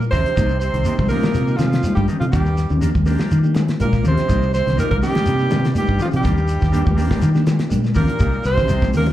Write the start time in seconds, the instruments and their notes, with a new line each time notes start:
0.01 muted clean electric guitar stroke, shekere
0.11 fingered electric bass D#2, trombone section C3, clean electric guitar D#3, transistor combo organ A#3 D4 F4 A#4, tenor saxophone C4, alto saxophone C5, muted clean electric guitar stroke, kick, open hi-hat, low conga, shekere
0.25 clean electric guitar D4 G4, closed hi-hat, shekere
0.35 fingered electric bass C2, clean electric guitar G3 A#3 D#4, transistor combo organ A#3 D4 D#4 G4, muted clean electric guitar stroke, kick, closed hi-hat, high conga, shekere
0.49 shekere
0.60 trombone section C3, tenor saxophone C4, alto saxophone C5, closed hi-hat, shekere
0.74 fingered electric bass C2, clean electric guitar D#3, muted clean electric guitar stroke, closed hi-hat, shekere
0.85 transistor combo organ A#3 D4 D#4 G4, clean electric guitar A#3 D#4 G4, closed hi-hat, high conga, shekere
0.98 fingered electric bass C2, clean electric guitar F3, kick, high conga, shekere
1.09 trombone section A#2, clean electric guitar A#3 D#4 G4, transistor combo organ A#3 D4 D#4 G4, tenor saxophone A#3, alto saxophone A#4, open hi-hat, high conga, low conga, shekere
1.22 clean electric guitar G3, muted clean electric guitar stroke, muted fingered electric bass stroke, snare, high conga, shekere
1.34 fingered electric bass C3, muted clean electric guitar stroke, closed hi-hat, high conga, shekere
1.47 clean electric guitar A#3 D#4 G4, shekere
1.57 trombone section F2, fingered electric bass C3, clean electric guitar D#3, tenor saxophone F3, alto saxophone F4, snare, closed hi-hat, high conga, shekere
1.72 snare, closed hi-hat, shekere
1.83 clean electric guitar G3 A#3 D#4 G4, closed hi-hat, high conga, shekere
1.95 trombone section G2, fingered electric bass G2, tenor saxophone G3, alto saxophone G4, muted clean electric guitar stroke, kick, shekere
2.08 clean electric guitar D#3, transistor combo organ A#3 D4 D#4 G4, muted clean electric guitar stroke, closed hi-hat, low conga, shekere
2.19 trombone section F2, fingered electric bass C3, tenor saxophone F3, clean electric guitar D#4 G4, alto saxophone F4, closed hi-hat, shekere
2.32 fingered electric bass D#2, trombone section G2, tenor saxophone G3, clean electric guitar G3 A#3 D4 G4, transistor combo organ A#3 D4 F4 G4, alto saxophone G4, kick, closed hi-hat, shekere
2.44 muted clean electric guitar stroke, shekere
2.57 snare, closed hi-hat, shekere
2.70 fingered electric bass D#2, clean electric guitar D#3, muted clean electric guitar stroke, low conga, shekere
2.81 transistor combo organ A#3 D4 F4 A#4, clean electric guitar A#3 D4 G4, closed hi-hat, high conga, shekere
2.94 fingered electric bass D#2, clean electric guitar F3, muted clean electric guitar stroke, kick, high conga, shekere
3.06 clean electric guitar A#3 D4 G4, transistor combo organ A#3 D4 F4 G4, open hi-hat, high conga, low conga, shekere
3.19 clean electric guitar G3, snare, high conga, shekere
3.30 fingered electric bass D#3, muted clean electric guitar stroke, closed hi-hat, high conga, shekere
3.44 clean electric guitar A#3 D4 G4, shekere
3.54 clean electric guitar D#3, muted clean electric guitar stroke, snare, closed hi-hat, high conga, shekere
3.68 snare, closed hi-hat, shekere
3.79 fingered electric bass A#1, trombone section A#2, clean electric guitar G3 A#3 D4 G4, tenor saxophone A#3, alto saxophone A#4, closed hi-hat, high conga, shekere
3.92 muted clean electric guitar stroke, kick, snare, shekere
4.03 fingered electric bass D#2, trombone section C3, clean electric guitar D#3, transistor combo organ A#3 D4 F4 G4, muted clean electric guitar stroke, closed hi-hat, low conga, shekere
4.08 tenor saxophone C4, alto saxophone C5
4.17 clean electric guitar D4 G4, snare, closed hi-hat, shekere
4.28 fingered electric bass C2, clean electric guitar G3 A#3 D#4 G4, transistor combo organ A#3 D4 D#4 G4, kick, closed hi-hat, shekere
4.42 shekere
4.54 trombone section C3, tenor saxophone C4, alto saxophone C5, snare, closed hi-hat, shekere
4.66 fingered electric bass C2, clean electric guitar D#3, muted clean electric guitar stroke, snare, closed hi-hat, low conga, shekere
4.77 transistor combo organ A#3 D4 D#4 G4, clean electric guitar A#3 D#4 G4, alto saxophone A#4, closed hi-hat, high conga, shekere
4.81 trombone section A#2, tenor saxophone A#3
4.90 fingered electric bass C2, clean electric guitar F3, alto saxophone A#4, muted clean electric guitar stroke, kick, high conga, shekere
4.94 trombone section A#2, tenor saxophone A#3
5.01 transistor combo organ A#3 D4 D#4 F4, clean electric guitar A#3 D#4 G4, alto saxophone G4, open hi-hat, high conga, low conga, shekere
5.05 trombone section G2, tenor saxophone G3
5.14 clean electric guitar G3, muted clean electric guitar stroke, muted fingered electric bass stroke, snare, high conga, shekere
5.26 fingered electric bass C3, muted clean electric guitar stroke, closed hi-hat, high conga, shekere
5.39 clean electric guitar A#3 D#4 G4, shekere
5.50 fingered electric bass C3, clean electric guitar D#3, snare, closed hi-hat, high conga, shekere
5.64 snare, closed hi-hat, shekere
5.74 clean electric guitar G3 A#3 D#4 G4, alto saxophone G4, closed hi-hat, high conga, shekere
5.79 trombone section G2, tenor saxophone G3
5.87 fingered electric bass G2, muted clean electric guitar stroke, kick, shekere
5.99 trombone section F2, clean electric guitar D#3, transistor combo organ A#3 D4 D#4 G4, alto saxophone F4, muted clean electric guitar stroke, closed hi-hat, low conga, shekere
6.04 tenor saxophone F3
6.12 trombone section G2, fingered electric bass C3, clean electric guitar D#4 G4, closed hi-hat, shekere
6.16 tenor saxophone G3, alto saxophone G4
6.23 fingered electric bass D#2, clean electric guitar G3 A#3 D4 G4, transistor combo organ A#3 D4 F4 G4, kick, snare, closed hi-hat, high conga, shekere
6.37 muted clean electric guitar stroke, shekere
6.48 closed hi-hat, shekere
6.61 fingered electric bass D#2, clean electric guitar D#3, kick, snare, shekere
6.72 transistor combo organ A#3 D4 F4 G4, clean electric guitar A#3 D4 G4, closed hi-hat, high conga, shekere
6.85 fingered electric bass D#2, clean electric guitar F3, kick, high conga, shekere
6.96 transistor combo organ A#3 D4 F4 G4, clean electric guitar A#3 D4 G4, open hi-hat, low conga, shekere
7.10 clean electric guitar G3, muted clean electric guitar stroke, kick, snare, high conga, shekere
7.21 fingered electric bass D#3, muted clean electric guitar stroke, snare, closed hi-hat, high conga, shekere
7.34 clean electric guitar A#3 D4 G4, snare, shekere
7.46 clean electric guitar D#3, snare, closed hi-hat, high conga, shekere
7.59 snare, closed hi-hat, shekere
7.70 fingered electric bass A#1, clean electric guitar G3 A#3 D4 G4, closed hi-hat, high conga, shekere
7.83 muted clean electric guitar stroke, snare, high conga, shekere
7.94 fingered electric bass D#2, trombone section A#2, clean electric guitar D#3, transistor combo organ A#3 D4 F4 G4, tenor saxophone A#3, alto saxophone A#4, muted clean electric guitar stroke, kick, open hi-hat, low conga, shekere
8.07 clean electric guitar D4 G4, closed hi-hat, shekere
8.19 fingered electric bass C2, clean electric guitar G3 A#3 D#4 G4, transistor combo organ A#3 D4 D#4 G4, kick, closed hi-hat, high conga, shekere
8.32 muted clean electric guitar stroke, shekere
8.44 fingered electric bass C2, trombone section C3, tenor saxophone C4, alto saxophone C5, muted clean electric guitar stroke, snare, closed hi-hat, shekere
8.57 clean electric guitar D#3, kick, snare, low conga, shekere
8.68 fingered electric bass C2, transistor combo organ A#3 D4 D#4 G4, muted clean electric guitar stroke, closed hi-hat, high conga, shekere
8.82 clean electric guitar F3 D#4 G4, kick, snare, high conga, shekere
8.93 fingered electric bass D#2, trombone section A#2, clean electric guitar A#3 D#4 G4, alto saxophone A#4, open hi-hat, high conga, low conga, shekere
8.97 tenor saxophone A#3
9.06 clean electric guitar G3, muted clean electric guitar stroke, high conga, shekere